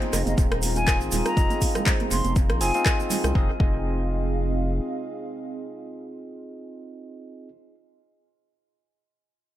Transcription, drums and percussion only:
0.02 closed hi-hat, high conga
0.13 cross-stick, open hi-hat, muted conga, high conga, shaker
0.26 closed hi-hat, high conga, shaker
0.38 kick, closed hi-hat, muted conga, shaker
0.52 cross-stick, closed hi-hat
0.62 open hi-hat, high conga, shaker
0.76 closed hi-hat, muted conga, shaker
0.87 kick, cross-stick, clap, closed hi-hat, shaker
1.01 muted conga, shaker
1.12 open hi-hat, low conga, shaker
1.25 cross-stick, closed hi-hat, muted conga, shaker
1.37 kick, closed hi-hat, shaker
1.50 closed hi-hat, high conga, shaker
1.61 kick, open hi-hat, muted conga, shaker
1.75 cross-stick, closed hi-hat, low conga, shaker
1.86 kick, clap, closed hi-hat, muted conga, shaker
2.00 closed hi-hat, high conga
2.11 open hi-hat, muted conga, high conga, shaker
2.24 closed hi-hat, high conga, shaker
2.36 kick, closed hi-hat, muted conga, shaker
2.50 cross-stick, closed hi-hat
2.61 open hi-hat, shaker
2.74 closed hi-hat, muted conga, shaker
2.86 kick, cross-stick, clap, closed hi-hat, shaker
3.00 muted conga, shaker
3.10 open hi-hat, high conga, low conga, shaker
3.24 cross-stick, closed hi-hat, muted conga, shaker
3.35 kick
3.60 kick

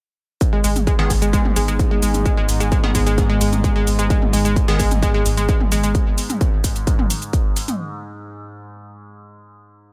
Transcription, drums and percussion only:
0.41 kick, closed hi-hat, shaker
0.64 open hi-hat, shaker
0.76 closed hi-hat, mid tom, shaker
0.87 kick, closed hi-hat, shaker
1.10 kick, open hi-hat, shaker
1.22 closed hi-hat, shaker
1.33 kick, closed hi-hat, shaker
1.45 mid tom
1.56 open hi-hat, shaker
1.68 closed hi-hat, shaker
1.79 kick, closed hi-hat, shaker
2.03 open hi-hat, shaker
2.14 closed hi-hat, mid tom, shaker
2.26 kick, closed hi-hat, shaker
2.49 open hi-hat, shaker
2.60 closed hi-hat, shaker
2.72 kick, closed hi-hat, shaker
2.84 mid tom
2.95 kick, open hi-hat, shaker
3.07 closed hi-hat, shaker
3.18 kick, closed hi-hat, shaker
3.41 open hi-hat, shaker
3.53 closed hi-hat, mid tom, shaker
3.64 kick, closed hi-hat, shaker
3.87 open hi-hat, shaker
3.99 closed hi-hat, shaker
4.10 kick, closed hi-hat, shaker
4.22 mid tom
4.33 open hi-hat, shaker
4.45 closed hi-hat, shaker
4.56 kick, closed hi-hat, shaker
4.79 kick, open hi-hat, shaker
4.91 closed hi-hat, mid tom, shaker
5.03 kick, closed hi-hat, shaker
5.26 open hi-hat, shaker
5.37 closed hi-hat, shaker
5.49 kick, closed hi-hat, shaker
5.60 mid tom
5.72 open hi-hat, shaker
5.83 closed hi-hat, shaker
5.95 kick, closed hi-hat, shaker
6.18 open hi-hat, shaker
6.30 closed hi-hat, mid tom, shaker
6.41 kick, closed hi-hat, shaker
6.64 kick, open hi-hat, shaker
6.76 closed hi-hat, shaker
6.87 kick, closed hi-hat, shaker
6.99 mid tom
7.10 open hi-hat, shaker
7.22 closed hi-hat, shaker
7.33 kick, closed hi-hat, shaker
7.56 open hi-hat, shaker
7.68 closed hi-hat, mid tom, shaker

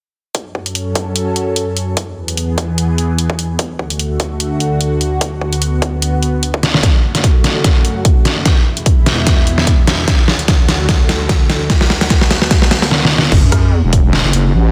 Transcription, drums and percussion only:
0.35 kick, closed hi-hat
0.55 kick
0.66 closed hi-hat
0.75 closed hi-hat
0.95 kick, closed hi-hat
1.16 closed hi-hat
1.36 closed hi-hat
1.56 closed hi-hat
1.77 closed hi-hat
1.97 kick, closed hi-hat
2.28 closed hi-hat
2.37 closed hi-hat
2.58 kick, closed hi-hat
2.78 closed hi-hat
2.98 closed hi-hat
3.18 closed hi-hat
3.30 kick
3.39 closed hi-hat
3.59 kick, closed hi-hat
3.79 kick
3.90 closed hi-hat
3.99 closed hi-hat
4.20 kick, closed hi-hat
4.40 closed hi-hat
4.60 closed hi-hat
4.81 closed hi-hat
5.01 closed hi-hat
5.21 kick, closed hi-hat
5.41 kick
5.53 closed hi-hat
5.62 closed hi-hat
5.82 kick, closed hi-hat
6.02 closed hi-hat
6.23 closed hi-hat
6.43 closed hi-hat
6.54 kick
6.63 snare, closed hi-hat
6.74 snare
6.83 kick, snare, closed hi-hat
7.15 snare, closed hi-hat
7.24 kick, closed hi-hat
7.44 snare, closed hi-hat
7.64 kick, snare, closed hi-hat
7.85 closed hi-hat
8.05 kick, closed hi-hat
8.25 snare, closed hi-hat
8.46 kick, snare, closed hi-hat
8.77 closed hi-hat
8.86 kick, closed hi-hat
9.06 snare, closed hi-hat
9.27 kick, snare, closed hi-hat
9.47 closed hi-hat
9.58 snare
9.67 kick, closed hi-hat
9.87 snare, closed hi-hat
10.08 kick, snare, closed hi-hat
10.28 snare
10.39 closed hi-hat
10.48 kick, snare, closed hi-hat
10.69 snare, closed hi-hat
10.89 kick, snare, closed hi-hat
11.09 snare, closed hi-hat
11.29 kick, snare, closed hi-hat
11.50 snare, closed hi-hat
11.70 kick, snare, closed hi-hat
11.81 snare
11.90 snare
12.01 snare, closed hi-hat
12.10 kick, snare, closed hi-hat
12.21 snare
12.31 snare, closed hi-hat
12.42 snare
12.51 kick, snare, closed hi-hat
12.62 snare
12.71 snare, closed hi-hat
12.82 snare
12.91 snare
13.05 snare
13.18 snare
13.32 kick, crash
13.52 kick, cross-stick, closed hi-hat
13.93 kick, closed hi-hat
14.13 snare
14.33 closed hi-hat

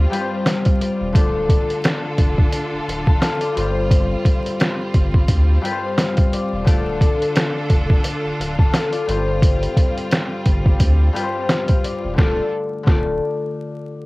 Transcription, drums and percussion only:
0.13 closed hi-hat
0.46 snare, closed hi-hat
0.65 kick, closed hi-hat
0.81 closed hi-hat
1.15 kick, closed hi-hat
1.49 kick, closed hi-hat
1.70 closed hi-hat
1.84 snare, closed hi-hat
2.18 kick, closed hi-hat
2.38 kick
2.52 closed hi-hat
2.89 closed hi-hat
3.07 kick
3.22 snare, closed hi-hat
3.41 closed hi-hat
3.57 closed hi-hat
3.91 kick, closed hi-hat
4.25 kick, closed hi-hat
4.46 closed hi-hat
4.60 snare, closed hi-hat
4.94 kick, closed hi-hat
5.14 kick
5.28 kick, closed hi-hat
5.65 closed hi-hat
5.98 snare, closed hi-hat
6.17 kick, closed hi-hat
6.33 closed hi-hat
6.67 kick, closed hi-hat
7.01 kick, closed hi-hat
7.22 closed hi-hat
7.36 snare, closed hi-hat
7.70 kick, closed hi-hat
7.90 kick
8.04 closed hi-hat
8.41 closed hi-hat
8.59 kick
8.74 snare, closed hi-hat
8.93 closed hi-hat
9.09 closed hi-hat
9.42 kick, closed hi-hat
9.63 closed hi-hat
9.77 kick, closed hi-hat
9.98 closed hi-hat
10.11 snare, closed hi-hat
10.46 kick, closed hi-hat
10.66 kick
10.80 kick, closed hi-hat
11.16 closed hi-hat
11.49 snare, closed hi-hat
11.68 kick, closed hi-hat
11.84 closed hi-hat
12.18 kick, snare
12.87 kick, snare

